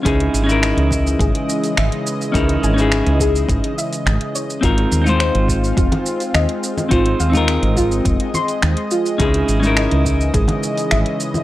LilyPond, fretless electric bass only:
\new Staff \with { instrumentName = "Fretless electric bass" } { \clef bass \time 4/4 \key des \lydian \tempo 4 = 105 des,16 r16 aes,,8. des,8. aes,,16 r8. aes,,16 r8. | des,16 r16 aes,,8. des,8. aes,,16 r8. aes,,16 r8. | aes,,16 r16 ees,8. aes,,8. f,,16 r8. ees,16 r8. | aes,,16 r16 ees,8. aes,,8. f,,16 r8. ees,16 r8. |
des,16 r16 aes,,8. des,8. aes,,16 r8. aes,,16 r8. | }